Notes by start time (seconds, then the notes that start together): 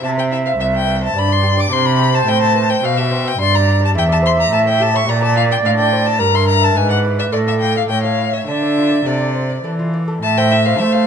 0.03 C3 E5 A5
0.17 C5 G5
0.31 E4 E5
0.46 C5 F5
0.59 C2 C4 E5
0.73 C5 G5
0.87 B4
1.01 C5 A5
1.14 G2 D5
1.18 B5
1.28 D5 C6
1.43 G4
1.57 D5 D6
1.71 C3 C5 C6
1.85 C5 B5
1.99 G4
2.13 C5 A5
2.27 A2 E4 G5
2.41 C5 A5
2.55 B4
2.70 C5 G5
2.83 B2 E5 F5
2.97 G4 E5
3.11 C5
3.25 E5 G5
3.38 G2 D5 C6
3.52 D5 A#5
3.67 G4
3.80 D5
3.85 A5
3.95 E2 E4 E5 G5
4.09 D5 A5
4.22 C5 C6
4.37 D5 A#5
4.51 A2 A5
4.66 C#5 G5
4.80 G4 A5
4.94 C#5 C#6
5.08 A#2 D5 A#5
5.22 D5 A5
5.37 F4 F5
5.51 D5 G5
5.63 A2 D4 F5
5.79 D5 G5
5.93 C5
6.06 D5 A5
6.19 G2 A#4 A#5
6.34 E5 C6
6.48 E4 A#5
6.62 E5 A5
6.76 G#2 B4 G#5
6.90 D5 F#5
7.05 E4
7.19 D5 E5
7.32 A2 A4 D5
7.47 D5 E5
7.60 F4 G5
7.75 D5 F5
7.89 A2 C#5 G5
8.03 C#5 F5
8.18 E4
8.33 C#5 E5
8.47 D3 D5 E5
8.62 D5
8.78 F4
8.91 D5
9.06 C3 A3 D5
9.20 D5
9.35 C5
9.50 D5
9.64 E3 A4
9.79 F4
9.94 D5
10.08 A4
10.23 A2 E5 A5
10.37 C5 G5
10.52 E4 E5
10.65 C5 F5
10.78 A3 C5 E5
10.93 C5 F5